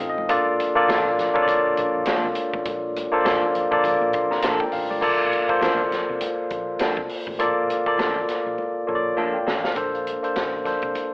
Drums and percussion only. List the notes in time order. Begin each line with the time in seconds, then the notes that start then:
0.18 high conga
0.29 kick, closed hi-hat, muted conga
0.60 closed hi-hat, muted conga
0.89 snare, closed hi-hat, high conga
1.18 snare, closed hi-hat, low conga
1.36 kick
1.48 kick, closed hi-hat, muted conga
1.77 closed hi-hat, muted conga, low conga
2.05 snare, closed hi-hat, high conga
2.35 closed hi-hat
2.54 kick, high conga
2.65 kick, closed hi-hat, muted conga
2.96 closed hi-hat, muted conga
3.26 snare, closed hi-hat, high conga
3.55 closed hi-hat, low conga
3.72 kick
3.84 kick, closed hi-hat, muted conga, low conga
4.13 kick, closed hi-hat, low conga
4.31 snare
4.42 snare, closed hi-hat, high conga
4.60 kick, high conga
4.72 open hi-hat
4.91 high conga
5.02 kick, crash, muted conga
5.33 closed hi-hat, muted conga
5.49 kick
5.61 snare, closed hi-hat, high conga
5.91 snare, closed hi-hat, low conga
6.21 closed hi-hat, muted conga
6.50 kick, closed hi-hat, muted conga, low conga
6.79 snare, closed hi-hat, high conga
6.97 kick
7.09 open hi-hat
7.27 kick, high conga
7.39 closed hi-hat, muted conga
7.70 closed hi-hat, muted conga
7.86 kick
7.99 snare, closed hi-hat, high conga
8.28 snare, closed hi-hat
8.58 muted conga
8.89 low conga
9.18 high conga
9.48 snare
9.64 snare, high conga
9.76 kick, closed hi-hat, muted conga
9.95 closed hi-hat
10.07 closed hi-hat, muted conga
10.24 closed hi-hat
10.36 snare, closed hi-hat, high conga
10.65 kick, snare, closed hi-hat, low conga
10.82 kick, closed hi-hat
10.95 closed hi-hat, muted conga